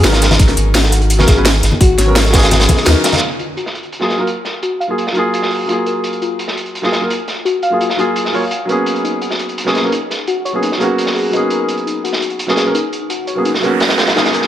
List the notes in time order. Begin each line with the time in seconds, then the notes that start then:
0.01 G#1 F#3 B3 D#4, snare, closed hi-hat
0.05 C#4 A#4
0.13 snare, closed hi-hat
0.22 A#4, snare, closed hi-hat
0.31 snare, closed hi-hat, high conga
0.39 G#1, kick, closed hi-hat
0.48 snare, closed hi-hat
0.57 G#1 D#4, closed hi-hat
0.74 F#4, snare, closed hi-hat
0.84 snare, high bongo
0.92 closed hi-hat
1.01 closed hi-hat
1.10 closed hi-hat
1.17 F#3 B3 C#4 A#4, snare, high conga
1.27 G#1 G#4, kick, snare, closed hi-hat
1.35 F#3 B3 C#4 B4
1.45 D#4, snare, closed hi-hat
1.63 G#1, snare, closed hi-hat
1.72 high conga
1.80 G#1 F#4, kick, closed hi-hat
1.98 G#1 C#5, snare, closed hi-hat
2.06 F#3 B3 C#4 A#4
2.15 snare, closed hi-hat
2.25 snare, high bongo
2.30 F#3 B3 F#4, kick, snare, closed hi-hat
2.35 C#4 G#4, snare, closed hi-hat
2.42 snare, closed hi-hat, high bongo
2.51 snare, closed hi-hat, high conga
2.60 snare, closed hi-hat
2.69 G#4, kick, closed hi-hat, high bongo, high conga
2.77 snare
2.85 D#2 F#3 B3 C#4 D#4 A#4, snare, closed hi-hat
3.04 A#4, snare, closed hi-hat
3.12 snare, closed hi-hat, high conga
3.17 snare, closed hi-hat
3.22 closed hi-hat
3.31 closed hi-hat
3.39 F4, closed hi-hat
3.57 F#4, closed hi-hat
3.66 snare
3.75 closed hi-hat
3.83 closed hi-hat
3.92 closed hi-hat
3.99 F#3 A#3 F4 G#4, snare
4.10 G#4, snare, closed hi-hat
4.17 F#3 A#3 F4 A#4
4.27 F4, closed hi-hat
4.45 snare, closed hi-hat
4.63 F#4, closed hi-hat
4.80 F5, closed hi-hat
4.88 F#3 A#3 F4 G#4
4.98 F4, closed hi-hat
5.07 snare
5.12 F#3 A#3 F#4, closed hi-hat
5.17 F4 G#4
5.34 closed hi-hat
5.42 snare
5.51 G#4, open hi-hat
5.66 F#3 A#3 F4, closed hi-hat
5.70 F4 G#4
5.86 A#4, closed hi-hat
6.04 closed hi-hat
6.13 closed hi-hat
6.22 F4, closed hi-hat
6.39 F#4, closed hi-hat
6.48 snare
6.57 closed hi-hat
6.66 closed hi-hat
6.75 closed hi-hat
6.82 F#3 A#3 F4 G#4, snare
6.92 G#4, snare, closed hi-hat
7.00 F#3 A#3 F4 A#4
7.10 F4, closed hi-hat
7.28 snare, closed hi-hat
7.45 F#4, closed hi-hat
7.63 F5, closed hi-hat
7.70 F#3 A#3 F4 G#4
7.81 F4, closed hi-hat
7.90 snare
7.96 F#3 A#3 F4 F#4 G#4, closed hi-hat
8.16 closed hi-hat
8.25 snare
8.32 F#3 A#3 F4 C#5 F5, open hi-hat
8.51 closed hi-hat
8.65 F#3 A#3 B3, closed hi-hat
8.70 C#4 G#4
8.86 closed hi-hat
8.96 closed hi-hat
9.04 D#4, closed hi-hat
9.21 F#4, closed hi-hat
9.31 snare
9.39 closed hi-hat
9.49 closed hi-hat
9.58 closed hi-hat
9.64 F#3 A#3 B3 C#4 G#4, snare
9.75 G#4, snare, closed hi-hat
9.82 F#3 A#3 B3 C#4 A#4
9.92 D#4, closed hi-hat
10.11 snare, closed hi-hat
10.27 F#4, closed hi-hat
10.45 C#5, closed hi-hat
10.53 F#3 A#3 B3 C#4 G#4
10.63 D#4, closed hi-hat
10.72 snare
10.77 F#3 A#3 B3 G#4, closed hi-hat
10.82 C#4 F#4
10.98 closed hi-hat
11.06 snare
11.15 G#4, open hi-hat
11.30 F#3 A#3 B3 D#4, closed hi-hat
11.35 C#4 G#4
11.50 A#4, closed hi-hat
11.68 closed hi-hat
11.77 closed hi-hat
11.86 D#4, closed hi-hat
12.04 F#4, closed hi-hat
12.13 snare
12.22 closed hi-hat
12.30 closed hi-hat
12.39 closed hi-hat
12.47 F#3 A#3 B3 C#4 G#4, snare
12.57 G#4, snare, closed hi-hat
12.64 F#3 A#3 B3 C#4 A#4
12.75 D#4, closed hi-hat
12.93 closed hi-hat
13.10 F#4, closed hi-hat, noise sweep
13.27 C#5, closed hi-hat
13.35 F#3 A#3 B3 C#4 G#4
13.45 D#4, closed hi-hat
13.54 snare
13.60 F#3 A#3 B3 G#4, closed hi-hat
13.65 C#4 F#4
13.80 snare, closed hi-hat
13.89 snare, closed hi-hat
13.98 G#4, snare, closed hi-hat
14.07 snare, closed hi-hat
14.14 F#3 A#3 B3 C#4 D#4 G#4, snare, closed hi-hat
14.25 snare, closed hi-hat
14.33 A#4, closed hi-hat
14.42 snare